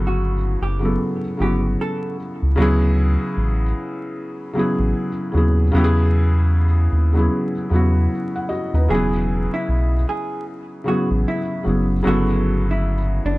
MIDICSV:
0, 0, Header, 1, 4, 480
1, 0, Start_track
1, 0, Key_signature, 4, "major"
1, 0, Tempo, 789474
1, 1565, Time_signature, 4, 2, 24, 8
1, 8137, End_track
2, 0, Start_track
2, 0, Title_t, "Hollow-body jazz guitar"
2, 0, Program_c, 0, 26
2, 42, Note_on_c, 0, 66, 64
2, 352, Note_off_c, 0, 66, 0
2, 380, Note_on_c, 0, 67, 73
2, 590, Note_off_c, 0, 67, 0
2, 861, Note_on_c, 0, 67, 68
2, 983, Note_off_c, 0, 67, 0
2, 1102, Note_on_c, 0, 69, 88
2, 1310, Note_off_c, 0, 69, 0
2, 5414, Note_on_c, 0, 68, 91
2, 5770, Note_off_c, 0, 68, 0
2, 5799, Note_on_c, 0, 64, 74
2, 6111, Note_off_c, 0, 64, 0
2, 6135, Note_on_c, 0, 68, 73
2, 6346, Note_off_c, 0, 68, 0
2, 6615, Note_on_c, 0, 66, 82
2, 6739, Note_off_c, 0, 66, 0
2, 6859, Note_on_c, 0, 64, 69
2, 7069, Note_off_c, 0, 64, 0
2, 7339, Note_on_c, 0, 66, 105
2, 7693, Note_off_c, 0, 66, 0
2, 7726, Note_on_c, 0, 64, 63
2, 8035, Note_off_c, 0, 64, 0
2, 8060, Note_on_c, 0, 62, 76
2, 8137, Note_off_c, 0, 62, 0
2, 8137, End_track
3, 0, Start_track
3, 0, Title_t, "Felt piano"
3, 0, Program_c, 1, 0
3, 0, Control_c, 1, 64, 127
3, 0, Note_on_c, 1, 49, 90
3, 0, Note_on_c, 1, 54, 85
3, 0, Note_on_c, 1, 59, 80
3, 0, Note_on_c, 1, 64, 79
3, 0, Note_on_c, 1, 69, 101
3, 197, Note_off_c, 1, 49, 0
3, 201, Note_off_c, 1, 54, 0
3, 206, Note_off_c, 1, 59, 0
3, 211, Note_off_c, 1, 64, 0
3, 215, Note_off_c, 1, 69, 0
3, 481, Note_on_c, 1, 49, 62
3, 491, Note_on_c, 1, 54, 62
3, 499, Note_on_c, 1, 59, 59
3, 508, Note_on_c, 1, 64, 58
3, 517, Note_on_c, 1, 69, 74
3, 725, Note_off_c, 1, 49, 0
3, 730, Note_off_c, 1, 54, 0
3, 734, Note_off_c, 1, 59, 0
3, 739, Note_off_c, 1, 64, 0
3, 743, Note_off_c, 1, 69, 0
3, 834, Note_on_c, 1, 49, 67
3, 843, Note_on_c, 1, 54, 62
3, 853, Note_on_c, 1, 59, 58
3, 862, Note_on_c, 1, 64, 57
3, 870, Note_on_c, 1, 66, 76
3, 1307, Note_off_c, 1, 49, 0
3, 1312, Note_off_c, 1, 54, 0
3, 1316, Note_off_c, 1, 59, 0
3, 1321, Note_off_c, 1, 64, 0
3, 1325, Note_off_c, 1, 66, 0
3, 1555, Note_on_c, 1, 49, 107
3, 1565, Note_on_c, 1, 54, 109
3, 1573, Control_c, 1, 64, 0
3, 1574, Note_on_c, 1, 59, 94
3, 1583, Note_on_c, 1, 64, 100
3, 1591, Note_on_c, 1, 68, 127
3, 1679, Control_c, 1, 64, 127
3, 2198, Note_off_c, 1, 49, 0
3, 2204, Note_off_c, 1, 54, 0
3, 2208, Note_off_c, 1, 59, 0
3, 2212, Note_off_c, 1, 64, 0
3, 2217, Note_off_c, 1, 68, 0
3, 2756, Note_on_c, 1, 49, 87
3, 2765, Note_on_c, 1, 54, 78
3, 2774, Note_on_c, 1, 59, 72
3, 2782, Note_on_c, 1, 64, 78
3, 2791, Note_on_c, 1, 68, 99
3, 3083, Note_off_c, 1, 49, 0
3, 3088, Note_off_c, 1, 54, 0
3, 3092, Note_off_c, 1, 59, 0
3, 3096, Note_off_c, 1, 64, 0
3, 3101, Note_off_c, 1, 68, 0
3, 3233, Note_on_c, 1, 49, 73
3, 3243, Note_on_c, 1, 54, 67
3, 3251, Note_on_c, 1, 59, 67
3, 3260, Note_on_c, 1, 64, 65
3, 3268, Note_on_c, 1, 68, 85
3, 3410, Note_off_c, 1, 49, 0
3, 3415, Note_off_c, 1, 54, 0
3, 3419, Note_off_c, 1, 59, 0
3, 3424, Note_off_c, 1, 64, 0
3, 3428, Note_off_c, 1, 68, 0
3, 3476, Note_on_c, 1, 49, 109
3, 3486, Note_on_c, 1, 54, 88
3, 3494, Control_c, 1, 64, 0
3, 3494, Note_on_c, 1, 59, 105
3, 3504, Note_on_c, 1, 64, 108
3, 3512, Note_on_c, 1, 67, 102
3, 3546, Note_off_c, 1, 67, 0
3, 3552, Note_on_c, 1, 68, 127
3, 3606, Control_c, 1, 64, 127
3, 4034, Note_off_c, 1, 49, 0
3, 4039, Note_off_c, 1, 54, 0
3, 4043, Note_off_c, 1, 59, 0
3, 4048, Note_off_c, 1, 64, 0
3, 4072, Note_off_c, 1, 68, 0
3, 4333, Note_on_c, 1, 49, 72
3, 4342, Note_on_c, 1, 54, 71
3, 4351, Note_on_c, 1, 59, 69
3, 4361, Note_on_c, 1, 64, 75
3, 4371, Note_on_c, 1, 68, 78
3, 4571, Note_off_c, 1, 49, 0
3, 4576, Note_off_c, 1, 54, 0
3, 4580, Note_off_c, 1, 59, 0
3, 4585, Note_off_c, 1, 64, 0
3, 4590, Note_off_c, 1, 68, 0
3, 4678, Note_on_c, 1, 49, 75
3, 4687, Note_on_c, 1, 54, 70
3, 4697, Note_on_c, 1, 59, 71
3, 4706, Note_on_c, 1, 64, 75
3, 4715, Note_on_c, 1, 66, 78
3, 4935, Note_off_c, 1, 64, 0
3, 4940, Note_off_c, 1, 66, 0
3, 5080, Note_on_c, 1, 78, 57
3, 5149, Note_off_c, 1, 49, 0
3, 5153, Note_off_c, 1, 54, 0
3, 5158, Note_off_c, 1, 59, 0
3, 5161, Note_on_c, 1, 75, 70
3, 5165, Note_on_c, 1, 66, 60
3, 5167, Note_off_c, 1, 78, 0
3, 5299, Note_off_c, 1, 75, 0
3, 5301, Note_off_c, 1, 66, 0
3, 5316, Note_on_c, 1, 71, 61
3, 5318, Note_on_c, 1, 63, 55
3, 5401, Note_on_c, 1, 49, 89
3, 5410, Note_on_c, 1, 54, 82
3, 5413, Control_c, 1, 64, 0
3, 5419, Note_on_c, 1, 59, 81
3, 5429, Note_on_c, 1, 64, 86
3, 5438, Note_on_c, 1, 68, 105
3, 5532, Control_c, 1, 64, 127
3, 5540, Note_off_c, 1, 71, 0
3, 5541, Note_off_c, 1, 63, 0
3, 6042, Note_off_c, 1, 49, 0
3, 6046, Note_off_c, 1, 54, 0
3, 6050, Note_off_c, 1, 59, 0
3, 6055, Note_off_c, 1, 64, 0
3, 6060, Note_off_c, 1, 68, 0
3, 6591, Note_on_c, 1, 49, 75
3, 6601, Note_on_c, 1, 54, 69
3, 6609, Note_on_c, 1, 59, 66
3, 6618, Note_on_c, 1, 64, 63
3, 6626, Note_on_c, 1, 68, 75
3, 6921, Note_off_c, 1, 49, 0
3, 6926, Note_off_c, 1, 54, 0
3, 6930, Note_off_c, 1, 59, 0
3, 6934, Note_off_c, 1, 64, 0
3, 6939, Note_off_c, 1, 68, 0
3, 7072, Note_on_c, 1, 49, 65
3, 7080, Note_on_c, 1, 54, 62
3, 7090, Note_on_c, 1, 59, 59
3, 7099, Note_on_c, 1, 64, 58
3, 7108, Note_on_c, 1, 68, 68
3, 7250, Note_off_c, 1, 49, 0
3, 7254, Note_off_c, 1, 54, 0
3, 7258, Note_off_c, 1, 59, 0
3, 7263, Note_off_c, 1, 64, 0
3, 7267, Note_off_c, 1, 68, 0
3, 7311, Note_on_c, 1, 49, 92
3, 7319, Note_on_c, 1, 54, 94
3, 7328, Note_on_c, 1, 59, 91
3, 7334, Control_c, 1, 64, 0
3, 7337, Note_on_c, 1, 64, 88
3, 7345, Note_on_c, 1, 69, 102
3, 7450, Control_c, 1, 64, 127
3, 7872, Note_off_c, 1, 49, 0
3, 7876, Note_off_c, 1, 54, 0
3, 7880, Note_off_c, 1, 59, 0
3, 7885, Note_off_c, 1, 64, 0
3, 7889, Note_off_c, 1, 69, 0
3, 8137, End_track
4, 0, Start_track
4, 0, Title_t, "Analog synth bass"
4, 0, Program_c, 2, 38
4, 0, Note_on_c, 2, 31, 98
4, 343, Note_off_c, 2, 31, 0
4, 371, Note_on_c, 2, 30, 87
4, 591, Note_off_c, 2, 30, 0
4, 850, Note_on_c, 2, 31, 81
4, 1070, Note_off_c, 2, 31, 0
4, 1474, Note_on_c, 2, 37, 88
4, 1561, Note_off_c, 2, 37, 0
4, 1568, Note_on_c, 2, 38, 97
4, 1925, Note_off_c, 2, 38, 0
4, 2049, Note_on_c, 2, 33, 99
4, 2270, Note_off_c, 2, 33, 0
4, 2911, Note_on_c, 2, 33, 83
4, 3000, Note_off_c, 2, 33, 0
4, 3248, Note_on_c, 2, 39, 95
4, 3469, Note_off_c, 2, 39, 0
4, 3489, Note_on_c, 2, 40, 103
4, 4183, Note_off_c, 2, 40, 0
4, 4209, Note_on_c, 2, 39, 87
4, 4430, Note_off_c, 2, 39, 0
4, 4687, Note_on_c, 2, 40, 91
4, 4909, Note_off_c, 2, 40, 0
4, 5311, Note_on_c, 2, 39, 80
4, 5400, Note_off_c, 2, 39, 0
4, 5407, Note_on_c, 2, 28, 105
4, 5765, Note_off_c, 2, 28, 0
4, 5888, Note_on_c, 2, 35, 82
4, 6110, Note_off_c, 2, 35, 0
4, 6752, Note_on_c, 2, 33, 77
4, 6840, Note_off_c, 2, 33, 0
4, 7088, Note_on_c, 2, 30, 93
4, 7310, Note_off_c, 2, 30, 0
4, 7329, Note_on_c, 2, 31, 101
4, 8023, Note_off_c, 2, 31, 0
4, 8051, Note_on_c, 2, 30, 91
4, 8137, Note_off_c, 2, 30, 0
4, 8137, End_track
0, 0, End_of_file